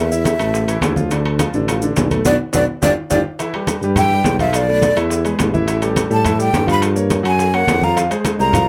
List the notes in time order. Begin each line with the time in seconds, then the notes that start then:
Already playing: E2 E5
0.11 E4 E5, high conga, maracas
0.25 high bongo, high conga, high timbale, low timbale, maracas
0.39 A1 A3 A4, high bongo, high conga, high timbale, maracas
0.53 high bongo, high conga, maracas
0.67 E3 E4, high bongo, high conga, high timbale, maracas
0.81 D2, high bongo, low bongo, high conga, high timbale, low timbale, maracas
0.96 F3 F4, high bongo, high conga, maracas
1.11 D3 D4, high bongo, high conga, high timbale, maracas
1.25 high bongo, high conga, high timbale
1.39 F3 F4, high bongo, high conga, high timbale, low timbale, maracas
1.53 A1 D3 D4, high bongo, high conga, maracas
1.68 F3 F4, high bongo, high conga, high timbale, maracas
1.82 D3 D4, high bongo, high conga, maracas
1.96 B1, high bongo, low bongo, high conga, high timbale, low timbale, maracas
2.11 A3 A4, high conga, high timbale, maracas
2.25 B1 B3 D4 F#4 D5, low bongo, high conga, high timbale, maracas
2.53 B1 B3 D4 F#4 D5, low bongo, high conga, high timbale, maracas
2.82 G1 D4 F4 G4 D5, low bongo, high conga, high timbale, maracas
3.10 G1 D4 F4 G4 D5, low bongo, high conga, high timbale, maracas
3.39 E3 E4 E5, high bongo, high conga, high timbale, maracas
3.54 G3 G4 B4, high bongo, high conga, high timbale
3.67 high bongo, high conga, high timbale, low timbale, maracas
3.81 G2 G3 G4 B4, high bongo, high conga, maracas
3.96 E3 E4 E5 G5, high bongo, high conga, low conga, high timbale, maracas
4.10 G3 G4 B4, high bongo, high conga
4.24 B1, high bongo, low bongo, high conga, high timbale, low timbale, maracas
4.39 F3 F4 E5 F5, high conga, high timbale, maracas
4.53 D5, high bongo, high conga, high timbale, maracas
4.69 A3 A4 B4, high conga
4.82 high bongo, high conga, high timbale, low timbale, maracas
4.96 E2 E3 E4 E5, high bongo, high conga, high timbale, maracas
5.10 high bongo, high conga, maracas
5.25 G#3 G#4 B4, high bongo, high conga, high timbale, maracas
5.39 A1, high bongo, low bongo, high conga, high timbale, low timbale, maracas
5.54 E3 E4 E5, high bongo, high conga, maracas
5.67 E3 E4 E5, high bongo, high conga, high timbale, maracas
5.82 G3 G4 A4, high conga, high timbale, maracas
5.96 high bongo, high conga, high timbale, low timbale, maracas
6.10 A2 G3 G4 A4 A5, high bongo, high conga, maracas
6.25 E3 E4 E5, high bongo, high conga, low conga, high timbale, maracas
6.39 G3 G4 A4 G5, high bongo, high conga, maracas
6.53 G2, high bongo, low bongo, high conga, high timbale, low timbale, maracas
6.67 F3 F4 F5 B5, high conga, high timbale, maracas
6.82 high bongo, high conga, high timbale, maracas
6.95 A#3 A#4 C#5, high conga, maracas
7.10 high bongo, high conga, high timbale, low timbale, maracas
7.23 F#2 F#3 F#4 F#5 G#5, high bongo, high conga, high timbale, maracas
7.39 high bongo, high conga, maracas
7.53 A#3 A#4 C#5 F#5, high bongo, high conga, high timbale
7.67 F2, high bongo, low bongo, high conga, high timbale, low timbale, maracas
7.82 F3 F4 F5 A#5, high bongo, high conga, maracas
7.96 F3 F4 F5, high bongo, high timbale, maracas
8.10 G#3 G#4 C5, high bongo, high conga, high timbale, maracas
8.25 high bongo, high conga, high timbale, low timbale, maracas
8.39 C2 G#3 G#4 C5 A#5, high bongo, high conga, maracas
8.53 F3 F4 F5, high bongo, high conga, low conga, high timbale, maracas